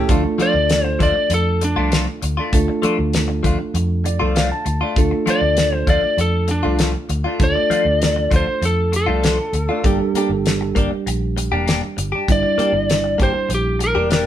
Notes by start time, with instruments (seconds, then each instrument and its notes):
0.09 fingered electric bass D2, clean electric guitar F3 A3 D4 F4, reed electric piano A3 D4 F4 A4, kick, closed hi-hat
0.24 muted clean electric guitar stroke
0.38 clean electric guitar F3 A3 D4 F4, muted fingered electric bass stroke, closed hi-hat
0.42 lead electric guitar D5
0.54 fingered electric bass D2, muted clean electric guitar stroke
0.70 snare, closed hi-hat
0.84 lead electric guitar C5, muted clean electric guitar stroke
0.99 fingered electric bass D2, clean electric guitar F3 A3 D4 F4, lead electric guitar D5, kick, closed hi-hat
1.15 muted fingered electric bass stroke, muted clean electric guitar stroke
1.30 fingered electric bass F2, muted clean electric guitar stroke, closed hi-hat
1.34 lead electric guitar A4
1.61 lead electric guitar D4, muted clean electric guitar stroke, closed hi-hat
1.76 fingered electric bass C2, clean electric guitar F3 A3 D4 F4
1.91 clean electric guitar F3 A3 D4 F4, snare, closed hi-hat
2.07 muted clean electric guitar stroke
2.22 fingered electric bass D2, muted clean electric guitar stroke, closed hi-hat
2.37 clean electric guitar A3 D4 F4
2.52 fingered electric bass D2, reed electric piano A3 D4 F4 A4, kick, closed hi-hat
2.68 muted clean electric guitar stroke
2.82 clean electric guitar F3 A3 D4 F4, muted fingered electric bass stroke, closed hi-hat
2.99 fingered electric bass D2, muted clean electric guitar stroke
3.13 snare, closed hi-hat
3.28 muted clean electric guitar stroke
3.43 fingered electric bass D2, clean electric guitar F3 A3 D4 F4, kick, closed hi-hat
3.59 muted clean electric guitar stroke, muted fingered electric bass stroke
3.74 fingered electric bass F2, muted clean electric guitar stroke, closed hi-hat
4.04 reed electric piano D5, muted clean electric guitar stroke, closed hi-hat
4.20 fingered electric bass C2, clean electric guitar F3 A3 D4 F4
4.35 clean electric guitar F3 A3 D4 F4, reed electric piano F5, snare, closed hi-hat
4.50 reed electric piano A5, muted clean electric guitar stroke
4.65 fingered electric bass D2, muted clean electric guitar stroke, closed hi-hat
4.81 clean electric guitar A3 D4 F4
4.96 fingered electric bass D2, reed electric piano A3 D4 F4 A4, kick, closed hi-hat
5.11 muted clean electric guitar stroke
5.26 clean electric guitar F3 A3 D4 F4, muted fingered electric bass stroke, closed hi-hat
5.30 lead electric guitar D5
5.41 fingered electric bass D2, muted clean electric guitar stroke
5.57 snare, closed hi-hat
5.73 lead electric guitar C5, muted clean electric guitar stroke
5.87 fingered electric bass D2, clean electric guitar F3 A3 D4 F4, lead electric guitar D5, kick, closed hi-hat
6.02 muted fingered electric bass stroke, muted clean electric guitar stroke
6.17 fingered electric bass F2, lead electric guitar A4, muted clean electric guitar stroke, closed hi-hat
6.48 lead electric guitar D4, muted clean electric guitar stroke, closed hi-hat
6.63 fingered electric bass C2, clean electric guitar F3 A3 D4 F4
6.78 clean electric guitar F3 A3 D4 F4, snare, closed hi-hat
6.94 muted clean electric guitar stroke
7.09 fingered electric bass D2, muted clean electric guitar stroke, closed hi-hat
7.24 clean electric guitar A3 D4 F4
7.40 fingered electric bass D2, reed electric piano A3 D4 F4 A4, lead electric guitar D5, kick, closed hi-hat
7.55 muted clean electric guitar stroke
7.70 clean electric guitar F3 A3 D4 F4, muted fingered electric bass stroke, closed hi-hat
7.85 fingered electric bass D2, muted clean electric guitar stroke
8.02 snare, closed hi-hat
8.16 muted clean electric guitar stroke
8.31 fingered electric bass D2, clean electric guitar F3 A3 D4 F4, kick, closed hi-hat
8.36 lead electric guitar C5
8.47 muted clean electric guitar stroke, muted fingered electric bass stroke
8.62 fingered electric bass F2, lead electric guitar A4, muted clean electric guitar stroke, closed hi-hat
8.92 lead electric guitar A4, muted clean electric guitar stroke, closed hi-hat
9.06 fingered electric bass C2, clean electric guitar F3 A3 D4 F4
9.22 clean electric guitar F3 A3 D4 F4, snare, closed hi-hat
9.38 muted clean electric guitar stroke
9.53 fingered electric bass D2, muted clean electric guitar stroke, closed hi-hat
9.69 clean electric guitar A3 D4 F4
9.83 fingered electric bass G1, reed electric piano G3 A#3 D4 G4, clean electric guitar A#3 D4 G4, kick, closed hi-hat
10.00 muted clean electric guitar stroke
10.14 clean electric guitar A#3 D4 G4, muted fingered electric bass stroke, closed hi-hat
10.29 fingered electric bass G1, muted clean electric guitar stroke
10.46 snare, closed hi-hat
10.61 muted clean electric guitar stroke
10.75 fingered electric bass G1, clean electric guitar A#3 D4 G4, kick, closed hi-hat
10.91 muted clean electric guitar stroke, muted fingered electric bass stroke
11.06 fingered electric bass A#1, muted clean electric guitar stroke, closed hi-hat
11.37 muted clean electric guitar stroke, closed hi-hat
11.51 fingered electric bass E1, clean electric guitar A#3 D4 G4
11.66 clean electric guitar A#3 D4 G4, snare, closed hi-hat
11.82 muted clean electric guitar stroke
11.97 fingered electric bass G1, muted clean electric guitar stroke, closed hi-hat
12.12 clean electric guitar D4 G4
12.28 fingered electric bass G1, reed electric piano G3 A#3 D4 E4, lead electric guitar D5, kick, closed hi-hat
12.43 muted clean electric guitar stroke
12.58 clean electric guitar A#3 D4 G4, muted fingered electric bass stroke, closed hi-hat
12.72 fingered electric bass G1, muted clean electric guitar stroke
12.90 snare, closed hi-hat
13.04 muted clean electric guitar stroke
13.18 fingered electric bass G1, clean electric guitar A#3 D4 G4, kick, closed hi-hat
13.23 lead electric guitar C5
13.34 muted clean electric guitar stroke, muted fingered electric bass stroke
13.49 fingered electric bass A#1, muted clean electric guitar stroke, closed hi-hat
13.54 lead electric guitar G4
13.79 muted clean electric guitar stroke, closed hi-hat
13.84 lead electric guitar A#4
13.95 fingered electric bass E1, clean electric guitar A#3 D4 G4
14.09 clean electric guitar A#3 D4 G4, snare, closed hi-hat